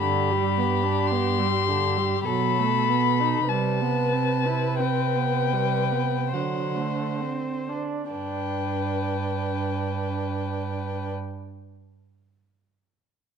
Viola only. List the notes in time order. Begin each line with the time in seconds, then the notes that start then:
0.02 D3
0.31 G3
0.57 B3
0.83 D4
1.11 B3
1.39 G3
1.69 D3
1.98 G3
2.28 F#3
2.59 A3
2.89 B3
3.20 D#4
3.51 G3
3.81 B3
4.13 C4
4.46 E4
4.79 C4
5.16 B3
5.53 G3
5.92 B3
6.34 F#3
6.76 A3
7.21 C4
7.68 D4
8.11 D4